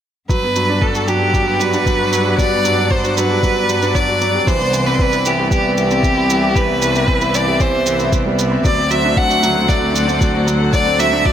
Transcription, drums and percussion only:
0.29 kick, shaker
0.56 shaker
0.82 kick
0.95 shaker
1.08 shaker
1.34 kick, shaker
1.60 shaker
1.73 shaker
1.86 kick, shaker
2.13 shaker
2.38 kick, shaker
2.65 shaker
2.91 kick
3.04 shaker
3.17 shaker
3.43 kick, shaker
3.69 shaker
3.82 shaker
3.95 kick, shaker
4.21 shaker
4.47 kick, shaker
4.73 shaker
4.99 kick
5.13 shaker
5.25 shaker
5.51 kick, shaker
5.77 shaker
5.91 shaker
6.03 kick, shaker
6.30 shaker
6.56 kick, shaker
6.82 shaker
6.95 shaker
7.08 kick
7.21 shaker
7.34 shaker
7.60 kick, shaker
7.86 shaker
7.99 shaker
8.12 kick, shaker
8.39 shaker
8.65 kick, shaker
8.91 shaker
9.17 kick
9.30 shaker
9.43 shaker
9.69 kick, shaker
9.96 shaker
10.09 shaker
10.21 kick, shaker
10.48 shaker
10.73 kick, shaker
10.99 shaker
11.25 kick

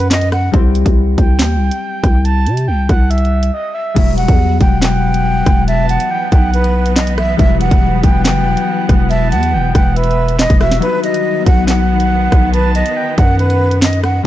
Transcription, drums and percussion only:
0.11 snare, clap
0.21 closed hi-hat
0.32 cross-stick, closed hi-hat
0.54 kick, closed hi-hat
0.75 closed hi-hat
0.86 kick, closed hi-hat
1.18 kick, closed hi-hat
1.39 snare, clap, closed hi-hat
1.71 closed hi-hat
2.04 kick, cross-stick, closed hi-hat
2.25 closed hi-hat
2.46 closed hi-hat
2.57 closed hi-hat
2.89 kick, cross-stick, closed hi-hat
3.11 closed hi-hat
3.18 closed hi-hat
3.25 closed hi-hat
3.43 closed hi-hat
3.96 kick, closed hi-hat, crash
4.18 closed hi-hat
4.28 kick, closed hi-hat
4.61 kick, closed hi-hat
4.82 snare, clap, closed hi-hat
5.14 closed hi-hat
5.46 kick, cross-stick, closed hi-hat
5.68 closed hi-hat
5.89 closed hi-hat
6.00 closed hi-hat
6.32 kick, closed hi-hat
6.54 closed hi-hat
6.64 closed hi-hat
6.86 closed hi-hat
6.96 snare, clap
7.07 closed hi-hat
7.18 cross-stick, closed hi-hat
7.39 kick, closed hi-hat
7.61 closed hi-hat
7.71 kick, closed hi-hat
8.03 kick, closed hi-hat
8.25 snare, clap, closed hi-hat
8.57 closed hi-hat
8.89 kick, cross-stick, closed hi-hat
9.11 closed hi-hat
9.32 closed hi-hat
9.43 closed hi-hat
9.75 kick, cross-stick, closed hi-hat
9.96 closed hi-hat
10.04 closed hi-hat
10.11 closed hi-hat
10.28 closed hi-hat
10.39 snare, clap
10.50 kick, closed hi-hat
10.61 cross-stick, open hi-hat
10.71 snare
10.82 closed hi-hat
11.04 closed hi-hat
11.14 closed hi-hat
11.46 kick, closed hi-hat
11.68 snare, clap, closed hi-hat
12.00 closed hi-hat
12.32 kick, cross-stick, closed hi-hat
12.54 closed hi-hat
12.75 closed hi-hat
12.86 closed hi-hat
13.18 kick, closed hi-hat
13.39 closed hi-hat
13.50 closed hi-hat
13.71 closed hi-hat
13.82 snare, clap
13.93 closed hi-hat
14.04 cross-stick, closed hi-hat

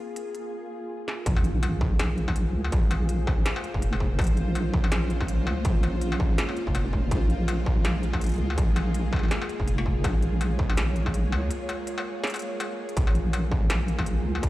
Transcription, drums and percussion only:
0.16 closed hi-hat
0.35 closed hi-hat
1.08 snare
1.26 kick, closed hi-hat
1.36 struck metal
1.44 closed hi-hat
1.63 closed hi-hat, struck metal
1.81 kick
1.99 snare, closed hi-hat, struck metal
2.18 closed hi-hat
2.28 kick, struck metal
2.36 closed hi-hat
2.65 struck metal
2.72 kick, closed hi-hat
2.91 closed hi-hat, struck metal
3.09 closed hi-hat
3.27 kick, struck metal
3.46 snare, closed hi-hat
3.56 struck metal
3.64 closed hi-hat
3.74 kick
3.82 closed hi-hat
3.93 struck metal
4.00 kick
4.19 kick, closed hi-hat, struck metal
4.21 closed hi-hat
4.24 closed hi-hat
4.27 closed hi-hat
4.37 closed hi-hat
4.55 closed hi-hat, struck metal
4.74 kick
4.84 struck metal
4.92 snare, closed hi-hat
5.10 closed hi-hat
5.21 kick, struck metal
5.28 closed hi-hat
5.47 struck metal
5.65 kick, closed hi-hat
5.83 closed hi-hat, struck metal
6.01 closed hi-hat
6.12 struck metal
6.20 kick
6.38 snare, closed hi-hat
6.49 struck metal
6.57 closed hi-hat
6.67 kick
6.75 closed hi-hat, struck metal
6.93 kick
7.11 kick, closed hi-hat
7.30 closed hi-hat
7.48 closed hi-hat, struck metal
7.66 kick
7.85 snare, closed hi-hat, struck metal
8.03 closed hi-hat
8.13 kick, struck metal
8.21 closed hi-hat
8.24 closed hi-hat
8.26 closed hi-hat
8.29 closed hi-hat
8.32 closed hi-hat
8.34 closed hi-hat
8.36 closed hi-hat
8.50 struck metal
8.58 kick, closed hi-hat
8.76 closed hi-hat, struck metal
8.94 closed hi-hat
9.13 kick, struck metal
9.16 struck metal
9.19 struck metal
9.23 struck metal
9.25 struck metal
9.28 snare, closed hi-hat, struck metal
9.42 struck metal
9.49 closed hi-hat
9.60 kick
9.68 closed hi-hat
9.78 struck metal
9.86 kick
10.04 kick, closed hi-hat, struck metal
10.22 closed hi-hat
10.41 closed hi-hat, struck metal
10.59 kick
10.70 struck metal
10.77 snare, closed hi-hat
10.96 closed hi-hat
11.06 kick, struck metal
11.14 closed hi-hat
11.32 struck metal
11.51 closed hi-hat
11.69 closed hi-hat, struck metal
11.87 closed hi-hat
11.98 struck metal
12.24 snare, closed hi-hat
12.27 closed hi-hat
12.30 closed hi-hat
12.34 closed hi-hat, struck metal
12.36 closed hi-hat
12.39 closed hi-hat
12.42 closed hi-hat
12.60 closed hi-hat, struck metal
12.89 closed hi-hat
12.97 kick, closed hi-hat
13.07 struck metal
13.15 closed hi-hat
13.33 closed hi-hat, struck metal
13.52 kick
13.70 snare, closed hi-hat, struck metal
13.88 closed hi-hat
13.99 kick, struck metal
14.06 closed hi-hat
14.35 struck metal
14.43 kick, closed hi-hat

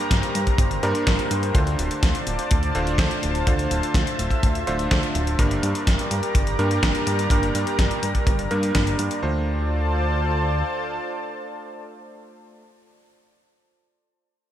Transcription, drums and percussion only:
0.11 kick, snare, closed hi-hat
0.23 closed hi-hat
0.35 closed hi-hat
0.47 kick, closed hi-hat
0.58 kick, closed hi-hat
0.71 closed hi-hat
0.83 closed hi-hat
0.95 closed hi-hat
1.07 kick, snare, closed hi-hat
1.19 closed hi-hat
1.31 closed hi-hat
1.43 closed hi-hat
1.55 kick, closed hi-hat
1.67 closed hi-hat
1.79 closed hi-hat
1.91 closed hi-hat
2.03 kick, snare, closed hi-hat
2.15 closed hi-hat
2.27 closed hi-hat
2.39 closed hi-hat
2.51 kick, closed hi-hat
2.63 closed hi-hat
2.75 closed hi-hat
2.87 closed hi-hat
2.98 kick, snare, closed hi-hat
3.11 closed hi-hat
3.23 closed hi-hat
3.35 closed hi-hat
3.47 kick, closed hi-hat
3.59 closed hi-hat
3.71 closed hi-hat
3.83 closed hi-hat
3.94 kick, snare, closed hi-hat
4.07 closed hi-hat
4.19 closed hi-hat
4.30 kick, closed hi-hat
4.43 kick, closed hi-hat
4.55 closed hi-hat
4.67 closed hi-hat
4.79 closed hi-hat
4.91 kick, snare, closed hi-hat
5.03 closed hi-hat
5.15 closed hi-hat
5.27 closed hi-hat
5.39 kick, closed hi-hat
5.51 closed hi-hat
5.63 closed hi-hat
5.75 closed hi-hat
5.87 kick, snare, closed hi-hat
5.99 closed hi-hat
6.11 closed hi-hat
6.23 closed hi-hat
6.35 kick, closed hi-hat
6.47 closed hi-hat
6.59 closed hi-hat
6.71 closed hi-hat
6.83 kick, snare, closed hi-hat
6.95 closed hi-hat
7.07 closed hi-hat
7.19 closed hi-hat
7.30 kick, closed hi-hat
7.43 closed hi-hat
7.55 closed hi-hat
7.67 closed hi-hat
7.79 kick, snare, closed hi-hat
7.91 closed hi-hat
8.03 closed hi-hat
8.15 kick, closed hi-hat
8.27 kick, closed hi-hat
8.39 closed hi-hat
8.51 closed hi-hat
8.63 closed hi-hat
8.75 kick, snare, closed hi-hat
8.87 closed hi-hat
8.99 closed hi-hat
9.11 closed hi-hat

